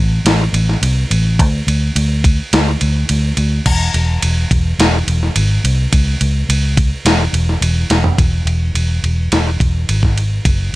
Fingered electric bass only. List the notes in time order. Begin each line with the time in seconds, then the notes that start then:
Already playing: A1
0.25 A1
0.53 A1
0.82 C2
1.11 A1
1.39 D2
1.67 D2
1.96 D2
2.53 D2
2.82 D2
3.10 D2
3.37 D2
3.65 E1
3.94 E1
4.23 E1
4.51 E1
4.79 E1
5.07 E1
5.36 G#1
5.64 C2
5.93 C#2
6.21 C#2
6.49 C#2
7.05 E1
7.33 E1
7.61 E1
7.90 E1
8.18 E1
8.45 E1
8.75 E1
9.03 E1
9.32 E1
9.60 E1
9.89 G#1
10.45 F#1